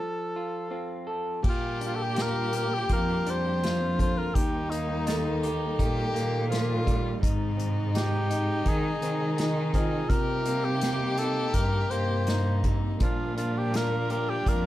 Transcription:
Already playing: clean electric guitar F3, cor anglais A4
0.36 clean electric guitar F4
0.71 clean electric guitar C4 F4
1.07 clean electric guitar A4
1.43 clean electric guitar A#2, cello A#2, string section D3 G3 A#3 F4, violin G4, kick, crash
1.49 cor anglais F4
1.81 clean electric guitar D4, closed hi-hat
1.86 cor anglais F4
1.95 cor anglais A4
2.02 cor anglais G4
2.16 clean electric guitar F4, vibraphone A#4, snare, closed hi-hat
2.22 cor anglais A#4
2.53 clean electric guitar G4, cor anglais A#4, closed hi-hat
2.74 cor anglais G4
2.89 cello F2, clean electric guitar F4, cor anglais A#4, kick, closed hi-hat
3.26 cello F2, clean electric guitar D4, cor anglais C5, closed hi-hat
3.62 clean electric guitar C3, violin F4, snare, closed hi-hat
3.98 clean electric guitar D3, cor anglais C5, kick, closed hi-hat
4.17 cor anglais A#4
4.34 cello D#2, clean electric guitar D#3, string section D#3 G3 G4, violin D#4, cor anglais G4, kick, closed hi-hat
4.70 clean electric guitar A#3, cor anglais D#4, closed hi-hat
5.07 clean electric guitar D#4, vibraphone A4, snare, closed hi-hat
5.43 clean electric guitar G4, closed hi-hat
5.79 cello A#2, clean electric guitar D#4, violin G4, kick, closed hi-hat
6.14 cello A#2, clean electric guitar A#3, closed hi-hat
6.50 clean electric guitar F3, violin F4, snare, closed hi-hat
6.86 clean electric guitar G3, kick, closed hi-hat
7.21 clean electric guitar G#2, cello G#2, string section C3 G#3 D#4, violin D#4, kick, closed hi-hat
7.57 clean electric guitar C4, closed hi-hat
7.95 clean electric guitar D#4, cor anglais G4, snare, closed hi-hat
8.31 clean electric guitar D#4, closed hi-hat
8.66 cello D#3, clean electric guitar D#4, cor anglais G#4, kick, closed hi-hat
9.02 cello D#3, clean electric guitar C4, closed hi-hat
9.38 clean electric guitar D#4, cor anglais G#4, snare, closed hi-hat
9.74 clean electric guitar C4, vibraphone F4, cor anglais G#4, kick, closed hi-hat
10.08 clean electric guitar C3, cello C3, string section G3 A#3, violin G4, cor anglais A#4, kick, closed hi-hat
10.45 clean electric guitar A#3, closed hi-hat
10.64 cor anglais G4
10.81 clean electric guitar D#4, snare, closed hi-hat
11.18 clean electric guitar D#4, cor anglais A4, closed hi-hat
11.54 cello G2, cor anglais A#4, kick, closed hi-hat
11.90 cello G2, clean electric guitar A#3, cor anglais C5, closed hi-hat
12.27 violin D#4, snare, closed hi-hat
12.64 clean electric guitar C3, kick, closed hi-hat
13.00 clean electric guitar A#2 F3 D4, cello A#2, string section D3 F4, violin D4, cor anglais F4, kick, closed hi-hat
13.37 clean electric guitar D4, cor anglais F4, closed hi-hat
13.58 cor anglais G4
13.74 clean electric guitar F4, cor anglais A#4, snare, closed hi-hat
14.10 clean electric guitar G4, cor anglais A#4, closed hi-hat
14.30 cor anglais G4
14.46 cello F2, clean electric guitar F4, cor anglais A#4, kick, closed hi-hat

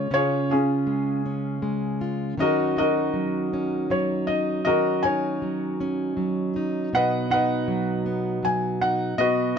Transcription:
Already playing: steel-string acoustic guitar C#4, felt piano C#5
0.11 steel-string acoustic guitar C#3 C#4, felt piano C#5
0.15 felt piano F4 G#4
0.50 felt piano C#4 F4 G#4, steel-string acoustic guitar F4
0.87 steel-string acoustic guitar G#3
1.26 steel-string acoustic guitar C#4
1.62 steel-string acoustic guitar G#3
2.01 steel-string acoustic guitar F4
2.38 steel-string acoustic guitar D#3 F#3 C#4 D#4 F#4, felt piano D#5
2.42 felt piano F#4 A#4
2.77 steel-string acoustic guitar D#4, felt piano F#4 A#4 D#5
3.13 steel-string acoustic guitar F#3
3.53 steel-string acoustic guitar C#4
3.90 steel-string acoustic guitar F#3, felt piano C#5
4.27 steel-string acoustic guitar D#4, felt piano D#5
4.65 steel-string acoustic guitar D#3 C#4, felt piano F#4 A#4 D#5
5.03 steel-string acoustic guitar D#4, felt piano C#5 G#5
5.42 steel-string acoustic guitar F#3
5.80 steel-string acoustic guitar C#4
6.17 steel-string acoustic guitar F#3
6.56 steel-string acoustic guitar D#4
6.93 steel-string acoustic guitar B2 B3, felt piano B4 D#5 F#5
7.31 steel-string acoustic guitar D#4, felt piano B4 D#5 F#5
7.68 steel-string acoustic guitar F#3
8.06 steel-string acoustic guitar B3
8.43 steel-string acoustic guitar F#3, felt piano G#5
8.81 steel-string acoustic guitar D#4, felt piano F#5
9.18 steel-string acoustic guitar B2 B3, felt piano F#4 B4 D#5

